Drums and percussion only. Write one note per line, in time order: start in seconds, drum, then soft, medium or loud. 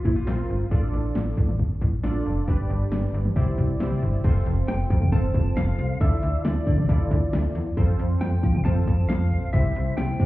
0.05 kick medium
0.27 snare loud
0.71 kick loud
1.15 snare loud
1.37 kick loud
1.49 mid tom medium
1.59 kick medium
1.81 kick medium
2.04 snare loud
2.48 kick loud
2.92 snare loud
3.25 mid tom medium
3.36 kick medium
3.58 kick medium
3.80 snare loud
3.91 mid tom medium
4.24 kick loud
4.24 closed hi-hat medium
4.24 crash medium
4.46 closed hi-hat medium
4.68 snare loud
4.68 closed hi-hat medium
4.90 kick loud
4.90 closed hi-hat medium
5.02 mid tom medium
5.12 kick medium
5.12 closed hi-hat medium
5.34 kick medium
5.34 closed hi-hat medium
5.57 snare loud
5.57 closed hi-hat medium
5.79 closed hi-hat medium
6.01 kick loud
6.01 closed hi-hat medium
6.23 closed hi-hat medium
6.45 snare loud
6.45 closed hi-hat medium
6.67 kick loud
6.67 closed hi-hat medium
6.78 mid tom medium
6.89 kick medium
6.89 closed hi-hat medium
7.11 kick medium
7.11 closed hi-hat medium
7.33 snare loud
7.33 closed hi-hat medium
7.55 closed hi-hat medium
7.77 kick loud
7.77 closed hi-hat medium
7.99 closed hi-hat medium
8.21 snare loud
8.21 closed hi-hat medium
8.43 kick loud
8.43 closed hi-hat medium
8.55 mid tom medium
8.65 kick medium
8.65 closed hi-hat medium
8.87 kick medium
8.87 closed hi-hat medium
9.09 snare loud
9.09 closed hi-hat medium
9.32 closed hi-hat medium
9.54 kick loud
9.54 closed hi-hat medium
9.75 closed hi-hat medium
9.98 snare loud
9.98 closed hi-hat medium
10.20 kick loud
10.20 closed hi-hat medium